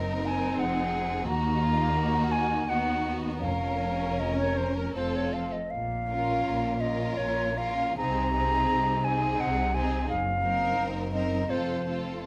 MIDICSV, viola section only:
0, 0, Header, 1, 2, 480
1, 0, Start_track
1, 0, Key_signature, -5, "minor"
1, 0, Tempo, 671141
1, 902, Time_signature, 3, 2, 24, 8
1, 902, Tempo, 710059
1, 1862, Tempo, 761421
1, 3782, Tempo, 732601
1, 4742, Tempo, 795756
1, 5222, Tempo, 701754
1, 7142, Tempo, 742574
1, 8090, End_track
2, 0, Start_track
2, 0, Title_t, "Viola section"
2, 0, Program_c, 0, 48
2, 0, Note_on_c, 0, 60, 48
2, 903, Note_off_c, 0, 60, 0
2, 909, Note_on_c, 0, 58, 54
2, 1861, Note_on_c, 0, 59, 48
2, 1865, Note_off_c, 0, 58, 0
2, 2086, Note_off_c, 0, 59, 0
2, 2093, Note_on_c, 0, 59, 47
2, 2330, Note_off_c, 0, 59, 0
2, 2340, Note_on_c, 0, 61, 45
2, 3299, Note_off_c, 0, 61, 0
2, 3301, Note_on_c, 0, 60, 33
2, 3642, Note_off_c, 0, 60, 0
2, 4024, Note_on_c, 0, 61, 39
2, 4490, Note_off_c, 0, 61, 0
2, 4496, Note_on_c, 0, 61, 37
2, 4968, Note_off_c, 0, 61, 0
2, 4976, Note_on_c, 0, 61, 40
2, 5214, Note_off_c, 0, 61, 0
2, 5222, Note_on_c, 0, 60, 46
2, 5464, Note_off_c, 0, 60, 0
2, 5472, Note_on_c, 0, 60, 49
2, 5940, Note_off_c, 0, 60, 0
2, 5948, Note_on_c, 0, 60, 47
2, 6418, Note_off_c, 0, 60, 0
2, 6426, Note_on_c, 0, 60, 45
2, 6661, Note_off_c, 0, 60, 0
2, 6898, Note_on_c, 0, 60, 47
2, 7358, Note_off_c, 0, 60, 0
2, 7367, Note_on_c, 0, 60, 40
2, 7594, Note_off_c, 0, 60, 0
2, 7602, Note_on_c, 0, 60, 35
2, 7843, Note_off_c, 0, 60, 0
2, 7851, Note_on_c, 0, 60, 32
2, 8090, Note_off_c, 0, 60, 0
2, 8090, End_track
0, 0, End_of_file